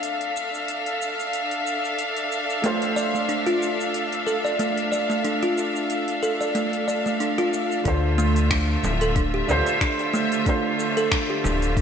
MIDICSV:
0, 0, Header, 1, 7, 480
1, 0, Start_track
1, 0, Key_signature, -1, "minor"
1, 0, Tempo, 652174
1, 22, Time_signature, 4, 2, 24, 8
1, 8696, End_track
2, 0, Start_track
2, 0, Title_t, "String section"
2, 0, Program_c, 0, 48
2, 0, Note_on_c, 0, 62, 67
2, 0, Note_on_c, 0, 69, 64
2, 0, Note_on_c, 0, 76, 59
2, 0, Note_on_c, 0, 77, 76
2, 5751, Note_off_c, 0, 69, 0
2, 5751, Note_off_c, 0, 77, 0
2, 5752, Note_off_c, 0, 62, 0
2, 5752, Note_off_c, 0, 76, 0
2, 5779, Note_on_c, 0, 50, 78
2, 5779, Note_on_c, 0, 57, 77
2, 5780, Note_on_c, 0, 76, 77
2, 5782, Note_on_c, 0, 65, 91
2, 8696, Note_off_c, 0, 50, 0
2, 8696, Note_off_c, 0, 57, 0
2, 8696, Note_off_c, 0, 65, 0
2, 8696, Note_off_c, 0, 76, 0
2, 8696, End_track
3, 0, Start_track
3, 0, Title_t, "Felt piano"
3, 0, Program_c, 1, 0
3, 0, Control_c, 1, 64, 127
3, 0, Note_on_c, 1, 57, 63
3, 0, Note_on_c, 1, 62, 60
3, 0, Note_on_c, 1, 65, 63
3, 0, Note_on_c, 1, 72, 72
3, 1908, Note_off_c, 1, 57, 0
3, 1913, Note_off_c, 1, 62, 0
3, 1918, Note_off_c, 1, 65, 0
3, 1922, Note_off_c, 1, 72, 0
3, 1927, Note_on_c, 1, 57, 66
3, 1936, Note_on_c, 1, 62, 59
3, 1945, Note_on_c, 1, 65, 64
3, 1957, Note_on_c, 1, 72, 73
3, 5749, Note_off_c, 1, 57, 0
3, 5753, Note_off_c, 1, 62, 0
3, 5758, Note_off_c, 1, 65, 0
3, 5763, Note_off_c, 1, 72, 0
3, 5767, Note_on_c, 1, 57, 74
3, 5776, Note_on_c, 1, 62, 70
3, 5787, Note_on_c, 1, 65, 71
3, 5790, Control_c, 1, 64, 0
3, 5797, Note_on_c, 1, 72, 81
3, 5915, Control_c, 1, 64, 127
3, 6949, Note_off_c, 1, 57, 0
3, 6953, Note_off_c, 1, 62, 0
3, 6959, Note_off_c, 1, 65, 0
3, 6964, Note_off_c, 1, 72, 0
3, 6967, Note_on_c, 1, 57, 83
3, 6977, Note_on_c, 1, 62, 80
3, 6987, Note_on_c, 1, 65, 73
3, 6997, Note_on_c, 1, 72, 96
3, 7669, Note_off_c, 1, 57, 0
3, 7674, Note_off_c, 1, 62, 0
3, 7679, Note_off_c, 1, 65, 0
3, 7684, Note_off_c, 1, 72, 0
3, 7690, Note_on_c, 1, 57, 81
3, 7700, Note_on_c, 1, 62, 72
3, 7711, Note_on_c, 1, 65, 70
3, 7719, Note_on_c, 1, 72, 86
3, 8696, Note_off_c, 1, 57, 0
3, 8696, Note_off_c, 1, 62, 0
3, 8696, Note_off_c, 1, 65, 0
3, 8696, Note_off_c, 1, 72, 0
3, 8696, End_track
4, 0, Start_track
4, 0, Title_t, "Kalimba"
4, 0, Program_c, 2, 108
4, 1941, Note_on_c, 2, 57, 94
4, 2067, Note_off_c, 2, 57, 0
4, 2181, Note_on_c, 2, 74, 75
4, 2301, Note_off_c, 2, 74, 0
4, 2314, Note_on_c, 2, 57, 67
4, 2376, Note_off_c, 2, 57, 0
4, 2420, Note_on_c, 2, 62, 76
4, 2547, Note_off_c, 2, 62, 0
4, 2550, Note_on_c, 2, 65, 90
4, 2655, Note_off_c, 2, 65, 0
4, 3140, Note_on_c, 2, 69, 80
4, 3267, Note_off_c, 2, 69, 0
4, 3272, Note_on_c, 2, 74, 72
4, 3370, Note_off_c, 2, 74, 0
4, 3380, Note_on_c, 2, 57, 88
4, 3507, Note_off_c, 2, 57, 0
4, 3620, Note_on_c, 2, 74, 66
4, 3740, Note_off_c, 2, 74, 0
4, 3753, Note_on_c, 2, 57, 75
4, 3815, Note_off_c, 2, 57, 0
4, 3860, Note_on_c, 2, 62, 75
4, 3987, Note_off_c, 2, 62, 0
4, 3994, Note_on_c, 2, 65, 83
4, 4096, Note_off_c, 2, 65, 0
4, 4583, Note_on_c, 2, 69, 83
4, 4708, Note_off_c, 2, 69, 0
4, 4715, Note_on_c, 2, 74, 65
4, 4811, Note_off_c, 2, 74, 0
4, 4821, Note_on_c, 2, 57, 87
4, 4947, Note_off_c, 2, 57, 0
4, 5062, Note_on_c, 2, 74, 62
4, 5181, Note_off_c, 2, 74, 0
4, 5195, Note_on_c, 2, 57, 74
4, 5256, Note_off_c, 2, 57, 0
4, 5302, Note_on_c, 2, 62, 75
4, 5428, Note_off_c, 2, 62, 0
4, 5434, Note_on_c, 2, 65, 93
4, 5536, Note_off_c, 2, 65, 0
4, 5782, Note_on_c, 2, 62, 79
4, 5857, Note_off_c, 2, 62, 0
4, 6021, Note_on_c, 2, 57, 110
4, 6148, Note_off_c, 2, 57, 0
4, 6262, Note_on_c, 2, 62, 81
4, 6338, Note_off_c, 2, 62, 0
4, 6635, Note_on_c, 2, 69, 79
4, 6737, Note_off_c, 2, 69, 0
4, 6741, Note_on_c, 2, 62, 94
4, 6861, Note_off_c, 2, 62, 0
4, 6874, Note_on_c, 2, 67, 79
4, 6976, Note_off_c, 2, 67, 0
4, 6982, Note_on_c, 2, 62, 67
4, 7108, Note_off_c, 2, 62, 0
4, 7223, Note_on_c, 2, 62, 78
4, 7298, Note_off_c, 2, 62, 0
4, 7460, Note_on_c, 2, 57, 99
4, 7587, Note_off_c, 2, 57, 0
4, 7701, Note_on_c, 2, 62, 80
4, 7777, Note_off_c, 2, 62, 0
4, 8074, Note_on_c, 2, 69, 77
4, 8177, Note_off_c, 2, 69, 0
4, 8182, Note_on_c, 2, 62, 98
4, 8301, Note_off_c, 2, 62, 0
4, 8315, Note_on_c, 2, 67, 71
4, 8417, Note_off_c, 2, 67, 0
4, 8423, Note_on_c, 2, 62, 67
4, 8548, Note_off_c, 2, 62, 0
4, 8662, Note_on_c, 2, 62, 83
4, 8696, Note_off_c, 2, 62, 0
4, 8696, End_track
5, 0, Start_track
5, 0, Title_t, "Analog synth bass"
5, 0, Program_c, 3, 38
5, 5782, Note_on_c, 3, 38, 98
5, 6453, Note_off_c, 3, 38, 0
5, 6501, Note_on_c, 3, 26, 99
5, 6932, Note_off_c, 3, 26, 0
5, 6981, Note_on_c, 3, 38, 76
5, 7076, Note_off_c, 3, 38, 0
5, 8419, Note_on_c, 3, 26, 97
5, 8696, Note_off_c, 3, 26, 0
5, 8696, End_track
6, 0, Start_track
6, 0, Title_t, "Frame drum"
6, 6506, Note_on_c, 9, 64, 89
6, 6580, Note_off_c, 9, 64, 0
6, 6982, Note_on_c, 9, 64, 91
6, 7056, Note_off_c, 9, 64, 0
6, 8420, Note_on_c, 9, 64, 92
6, 8493, Note_off_c, 9, 64, 0
6, 8696, End_track
7, 0, Start_track
7, 0, Title_t, "Drums"
7, 22, Note_on_c, 9, 46, 64
7, 28, Note_on_c, 9, 82, 31
7, 95, Note_off_c, 9, 46, 0
7, 101, Note_off_c, 9, 82, 0
7, 154, Note_on_c, 9, 46, 39
7, 227, Note_off_c, 9, 46, 0
7, 269, Note_on_c, 9, 82, 66
7, 342, Note_off_c, 9, 82, 0
7, 401, Note_on_c, 9, 82, 39
7, 475, Note_off_c, 9, 82, 0
7, 503, Note_on_c, 9, 46, 58
7, 510, Note_on_c, 9, 82, 31
7, 577, Note_off_c, 9, 46, 0
7, 583, Note_off_c, 9, 82, 0
7, 636, Note_on_c, 9, 46, 38
7, 709, Note_off_c, 9, 46, 0
7, 749, Note_on_c, 9, 82, 70
7, 823, Note_off_c, 9, 82, 0
7, 881, Note_on_c, 9, 82, 43
7, 955, Note_off_c, 9, 82, 0
7, 982, Note_on_c, 9, 46, 55
7, 988, Note_on_c, 9, 82, 32
7, 1056, Note_off_c, 9, 46, 0
7, 1062, Note_off_c, 9, 82, 0
7, 1114, Note_on_c, 9, 46, 38
7, 1187, Note_off_c, 9, 46, 0
7, 1228, Note_on_c, 9, 82, 68
7, 1301, Note_off_c, 9, 82, 0
7, 1360, Note_on_c, 9, 82, 38
7, 1433, Note_off_c, 9, 82, 0
7, 1462, Note_on_c, 9, 46, 62
7, 1468, Note_on_c, 9, 82, 30
7, 1535, Note_off_c, 9, 46, 0
7, 1541, Note_off_c, 9, 82, 0
7, 1594, Note_on_c, 9, 46, 39
7, 1667, Note_off_c, 9, 46, 0
7, 1707, Note_on_c, 9, 82, 68
7, 1781, Note_off_c, 9, 82, 0
7, 1840, Note_on_c, 9, 82, 39
7, 1914, Note_off_c, 9, 82, 0
7, 1942, Note_on_c, 9, 46, 60
7, 1948, Note_on_c, 9, 82, 33
7, 2015, Note_off_c, 9, 46, 0
7, 2021, Note_off_c, 9, 82, 0
7, 2075, Note_on_c, 9, 46, 38
7, 2149, Note_off_c, 9, 46, 0
7, 2188, Note_on_c, 9, 82, 72
7, 2262, Note_off_c, 9, 82, 0
7, 2321, Note_on_c, 9, 82, 39
7, 2395, Note_off_c, 9, 82, 0
7, 2423, Note_on_c, 9, 46, 60
7, 2429, Note_on_c, 9, 82, 32
7, 2496, Note_off_c, 9, 46, 0
7, 2502, Note_off_c, 9, 82, 0
7, 2554, Note_on_c, 9, 46, 37
7, 2628, Note_off_c, 9, 46, 0
7, 2669, Note_on_c, 9, 82, 68
7, 2742, Note_off_c, 9, 82, 0
7, 2802, Note_on_c, 9, 82, 43
7, 2876, Note_off_c, 9, 82, 0
7, 2902, Note_on_c, 9, 46, 58
7, 2908, Note_on_c, 9, 82, 30
7, 2976, Note_off_c, 9, 46, 0
7, 2982, Note_off_c, 9, 82, 0
7, 3036, Note_on_c, 9, 46, 37
7, 3110, Note_off_c, 9, 46, 0
7, 3148, Note_on_c, 9, 82, 70
7, 3222, Note_off_c, 9, 82, 0
7, 3280, Note_on_c, 9, 82, 39
7, 3354, Note_off_c, 9, 82, 0
7, 3382, Note_on_c, 9, 46, 60
7, 3388, Note_on_c, 9, 82, 31
7, 3456, Note_off_c, 9, 46, 0
7, 3462, Note_off_c, 9, 82, 0
7, 3515, Note_on_c, 9, 46, 38
7, 3588, Note_off_c, 9, 46, 0
7, 3628, Note_on_c, 9, 82, 68
7, 3702, Note_off_c, 9, 82, 0
7, 3759, Note_on_c, 9, 82, 40
7, 3833, Note_off_c, 9, 82, 0
7, 3860, Note_on_c, 9, 46, 62
7, 3867, Note_on_c, 9, 82, 33
7, 3934, Note_off_c, 9, 46, 0
7, 3940, Note_off_c, 9, 82, 0
7, 3994, Note_on_c, 9, 46, 38
7, 4067, Note_off_c, 9, 46, 0
7, 4106, Note_on_c, 9, 82, 74
7, 4179, Note_off_c, 9, 82, 0
7, 4240, Note_on_c, 9, 82, 40
7, 4314, Note_off_c, 9, 82, 0
7, 4341, Note_on_c, 9, 46, 59
7, 4347, Note_on_c, 9, 82, 29
7, 4415, Note_off_c, 9, 46, 0
7, 4421, Note_off_c, 9, 82, 0
7, 4474, Note_on_c, 9, 46, 36
7, 4548, Note_off_c, 9, 46, 0
7, 4587, Note_on_c, 9, 82, 71
7, 4660, Note_off_c, 9, 82, 0
7, 4720, Note_on_c, 9, 82, 43
7, 4794, Note_off_c, 9, 82, 0
7, 4822, Note_on_c, 9, 46, 56
7, 4828, Note_on_c, 9, 82, 31
7, 4895, Note_off_c, 9, 46, 0
7, 4901, Note_off_c, 9, 82, 0
7, 4955, Note_on_c, 9, 46, 35
7, 5028, Note_off_c, 9, 46, 0
7, 5068, Note_on_c, 9, 82, 75
7, 5142, Note_off_c, 9, 82, 0
7, 5201, Note_on_c, 9, 82, 40
7, 5274, Note_off_c, 9, 82, 0
7, 5302, Note_on_c, 9, 46, 58
7, 5308, Note_on_c, 9, 82, 30
7, 5375, Note_off_c, 9, 46, 0
7, 5381, Note_off_c, 9, 82, 0
7, 5434, Note_on_c, 9, 46, 37
7, 5508, Note_off_c, 9, 46, 0
7, 5546, Note_on_c, 9, 82, 68
7, 5620, Note_off_c, 9, 82, 0
7, 5679, Note_on_c, 9, 82, 41
7, 5752, Note_off_c, 9, 82, 0
7, 5780, Note_on_c, 9, 46, 59
7, 5782, Note_on_c, 9, 36, 102
7, 5786, Note_on_c, 9, 82, 35
7, 5854, Note_off_c, 9, 46, 0
7, 5855, Note_off_c, 9, 36, 0
7, 5860, Note_off_c, 9, 82, 0
7, 6027, Note_on_c, 9, 82, 76
7, 6101, Note_off_c, 9, 82, 0
7, 6154, Note_on_c, 9, 46, 47
7, 6160, Note_on_c, 9, 82, 45
7, 6228, Note_off_c, 9, 46, 0
7, 6234, Note_off_c, 9, 82, 0
7, 6261, Note_on_c, 9, 26, 106
7, 6261, Note_on_c, 9, 36, 105
7, 6261, Note_on_c, 9, 46, 59
7, 6267, Note_on_c, 9, 82, 34
7, 6335, Note_off_c, 9, 26, 0
7, 6335, Note_off_c, 9, 36, 0
7, 6335, Note_off_c, 9, 46, 0
7, 6341, Note_off_c, 9, 82, 0
7, 6506, Note_on_c, 9, 82, 83
7, 6580, Note_off_c, 9, 82, 0
7, 6632, Note_on_c, 9, 46, 48
7, 6638, Note_on_c, 9, 82, 44
7, 6706, Note_off_c, 9, 46, 0
7, 6712, Note_off_c, 9, 82, 0
7, 6740, Note_on_c, 9, 46, 61
7, 6741, Note_on_c, 9, 36, 105
7, 6746, Note_on_c, 9, 82, 35
7, 6814, Note_off_c, 9, 46, 0
7, 6815, Note_off_c, 9, 36, 0
7, 6820, Note_off_c, 9, 82, 0
7, 6986, Note_on_c, 9, 82, 81
7, 7059, Note_off_c, 9, 82, 0
7, 7114, Note_on_c, 9, 46, 45
7, 7120, Note_on_c, 9, 82, 43
7, 7187, Note_off_c, 9, 46, 0
7, 7193, Note_off_c, 9, 82, 0
7, 7221, Note_on_c, 9, 26, 101
7, 7221, Note_on_c, 9, 36, 106
7, 7221, Note_on_c, 9, 46, 59
7, 7227, Note_on_c, 9, 82, 32
7, 7295, Note_off_c, 9, 26, 0
7, 7295, Note_off_c, 9, 36, 0
7, 7295, Note_off_c, 9, 46, 0
7, 7301, Note_off_c, 9, 82, 0
7, 7354, Note_on_c, 9, 46, 32
7, 7428, Note_off_c, 9, 46, 0
7, 7468, Note_on_c, 9, 82, 72
7, 7541, Note_off_c, 9, 82, 0
7, 7594, Note_on_c, 9, 46, 41
7, 7600, Note_on_c, 9, 82, 44
7, 7668, Note_off_c, 9, 46, 0
7, 7674, Note_off_c, 9, 82, 0
7, 7701, Note_on_c, 9, 36, 110
7, 7701, Note_on_c, 9, 46, 57
7, 7707, Note_on_c, 9, 82, 34
7, 7774, Note_off_c, 9, 36, 0
7, 7774, Note_off_c, 9, 46, 0
7, 7780, Note_off_c, 9, 82, 0
7, 7947, Note_on_c, 9, 82, 79
7, 8020, Note_off_c, 9, 82, 0
7, 8074, Note_on_c, 9, 46, 45
7, 8080, Note_on_c, 9, 82, 46
7, 8147, Note_off_c, 9, 46, 0
7, 8154, Note_off_c, 9, 82, 0
7, 8181, Note_on_c, 9, 26, 103
7, 8181, Note_on_c, 9, 36, 108
7, 8181, Note_on_c, 9, 46, 59
7, 8187, Note_on_c, 9, 82, 37
7, 8255, Note_off_c, 9, 26, 0
7, 8255, Note_off_c, 9, 36, 0
7, 8255, Note_off_c, 9, 46, 0
7, 8261, Note_off_c, 9, 82, 0
7, 8429, Note_on_c, 9, 82, 83
7, 8502, Note_off_c, 9, 82, 0
7, 8555, Note_on_c, 9, 46, 44
7, 8561, Note_on_c, 9, 82, 46
7, 8628, Note_off_c, 9, 46, 0
7, 8634, Note_off_c, 9, 82, 0
7, 8661, Note_on_c, 9, 36, 112
7, 8664, Note_on_c, 9, 46, 57
7, 8670, Note_on_c, 9, 82, 34
7, 8696, Note_off_c, 9, 36, 0
7, 8696, Note_off_c, 9, 46, 0
7, 8696, Note_off_c, 9, 82, 0
7, 8696, End_track
0, 0, End_of_file